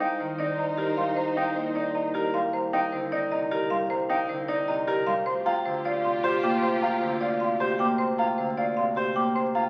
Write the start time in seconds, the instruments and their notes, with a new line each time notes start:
Already playing: bass clarinet C2, violin section D#4 C5, french horn D#4
0.00 grand piano D#4, marimba F5, flute G5
0.20 harp D#3, marimba C5
0.38 grand piano D#4, marimba D5, flute D#5
0.58 marimba D#5, flute A#5
0.77 marimba G4, grand piano A#4
0.97 harp G3, marimba F5, flute C6
1.17 marimba C5, flute A#5
1.36 grand piano D#4, marimba F5, flute G5
1.56 harp A#2, marimba C5
1.75 grand piano D#4, marimba D5, flute D#5
1.95 marimba D#5, flute A#5
2.14 marimba G4, grand piano A#4
2.34 harp G3, marimba F5, flute C6
2.53 marimba C5, flute A#5
2.73 grand piano D#4, marimba F5, flute G5
2.92 harp D3, marimba C5
3.12 grand piano D#4, marimba D5, flute D#5
3.32 harp C3, marimba D#5, flute A#5
3.51 marimba G4, grand piano A#4
3.70 harp G3, marimba F5, flute C6
3.90 marimba C5, flute A#5
4.09 grand piano D#4, marimba F5, flute G5
4.29 harp D3, marimba C5
4.48 grand piano D#4, marimba D5, flute D#5
4.68 harp C3, marimba D#5, flute A#5
4.87 marimba G4, grand piano A#4
5.07 harp G3, marimba F5, flute C6
5.26 bass clarinet D2, violin section F4 G4, french horn F4, marimba C5, flute C6
5.46 grand piano F4, marimba G5, flute A#5
5.65 harp D3, marimba C5
5.85 grand piano F4, marimba D5, flute F5
6.04 harp C3, marimba F5, flute C6
6.24 marimba G4, grand piano C5
6.43 harp A#3, marimba G5, flute D6
6.63 marimba C5, flute C6
6.82 grand piano F4, marimba G5, flute A#5
7.02 harp D3, marimba C5
7.21 grand piano F4, marimba D5, flute F5
7.40 harp C3, marimba F5, flute C6
7.60 marimba G4, grand piano C5
7.79 harp A#3, marimba G5, flute D6
7.98 marimba C5, flute C6
8.18 grand piano F4, marimba G5, flute A#5
8.38 harp D3, marimba C5
8.57 grand piano F4, marimba D5, flute F5
8.77 harp C3, marimba F5, flute C6
8.96 marimba G4, grand piano C5
9.16 harp A#3, marimba G5, flute D6
9.35 marimba C5, flute C6
9.55 grand piano F4, marimba G5, flute A#5